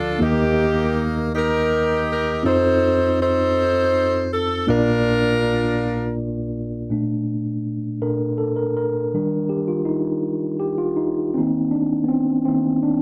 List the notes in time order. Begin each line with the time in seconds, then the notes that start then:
Already playing: D2 D3 F3 D4 F4 A4 D5 A5
0.19 D#2 D#3 A#3 D#4 G4 A#4 D#5
0.24 G4
1.35 D#4 G4 A#4
2.11 A#4
2.43 F2 C4 D#4 F4 A4 C5
2.47 C5
3.21 D#4 A4 C5
4.33 A4
4.67 A#1 A#2 A#3 D4 F4 A#4 D5
6.90 A#2 A3 D4
8.01 A#2 D4 A4 A#4
8.38 A4
8.56 A#4
8.77 A#4
9.14 D#3 G3 D4
9.49 G4
9.68 F4
9.85 D#4
10.59 G4
10.78 F4
10.96 D#4
11.34 D#3 A#3 C4 D#4
11.71 D4
12.04 B3
12.09 C4
12.45 D#3 A#3 C4 D#4
12.83 D4